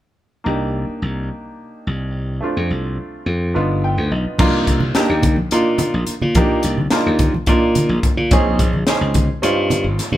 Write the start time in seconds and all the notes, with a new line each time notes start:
0.44 C2 A#3 D4 D#4 G4
0.89 muted slap bass stroke
1.02 C2
1.87 C2
2.41 A3 C4 D4 F4, muted slap bass stroke
2.57 F2
2.71 C2
3.26 F2
3.54 G1 B3 D4 D#4 F4
3.84 G5
3.98 D2
4.11 B1 D#5
4.26 muted slap bass stroke
4.39 C2 A#3 D4 D#4 F4, kick, crash, high conga
4.67 C2, kick, closed hi-hat
4.80 low conga
4.95 A#3 D4 D#4 G4, muted slap bass stroke, snare, closed hi-hat, low conga
5.09 D#2
5.23 kick, closed hi-hat, low conga
5.36 high conga
5.51 A#2 A#3 D4 D#4 F4, closed hi-hat
5.78 closed hi-hat, low conga
5.94 A#1
6.07 closed hi-hat, low conga
6.21 A#2, low conga
6.35 A#3 D4 D#4 G4, kick, closed hi-hat, high conga
6.63 C2, closed hi-hat
6.78 low conga
6.91 A#3 D4 D#4 F4, snare, closed hi-hat, low conga
7.06 D#2
7.19 kick, closed hi-hat, low conga
7.34 high conga
7.46 A#2 A#3 D4 D#4 F4, kick, closed hi-hat
7.75 closed hi-hat, low conga
7.89 A#1
8.03 kick, closed hi-hat, low conga
8.17 A#2, low conga
8.31 A#1 C4 C#4 D#4 G#4, kick, closed hi-hat, high conga
8.59 A#1, kick, closed hi-hat
8.73 low conga
8.87 C4 C#4 D#4 G#4, muted slap bass stroke, snare, closed hi-hat, low conga
9.01 C#2
9.14 kick, closed hi-hat, low conga
9.42 G2 C4 C#4 D#4 F4, closed hi-hat
9.70 closed hi-hat, low conga
9.84 G#1
9.98 muted slap bass stroke, snare, closed hi-hat, low conga
10.12 G2, low conga